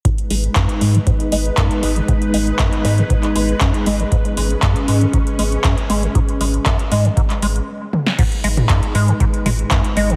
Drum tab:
CC |----------------|----------------|----------------|----------------|
HH |xxoxxxoxxxoxxxox|xxoxxxoxxxoxxxox|xxoxxxoxxxoxxxox|xxoxxxoxxxox----|
CP |----x-------x---|----x----x--x---|----x-------x---|----x----x------|
SD |----------------|----------------|----------------|---------------o|
T1 |----------------|----------------|----------------|--------------o-|
T2 |----------------|----------------|----------------|----------------|
BD |o---o---o---o---|o---o---o---o---|o---o---o---o---|o---o---o-------|

CC |x---------------|
HH |xxoxxxoxxxoxxxox|
CP |----x-------x---|
SD |----------------|
T1 |----------------|
T2 |---o------o-----|
BD |o---o---o---o---|